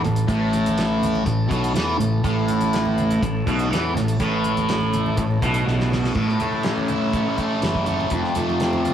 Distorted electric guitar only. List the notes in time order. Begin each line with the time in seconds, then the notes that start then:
0.04 A2
0.27 A2
1.25 A2
1.48 B2
1.74 E3
1.98 A2
2.23 A2
3.23 A2
3.46 B2
3.70 E3
3.95 A2
4.20 A2
5.17 A2
5.42 B2
5.67 B2
6.15 A2
6.40 A3
6.64 C#4
6.89 E4
7.13 C#4
7.37 A3
7.61 E3
7.86 A3
8.11 F2
8.35 A3
8.61 C4
8.85 F4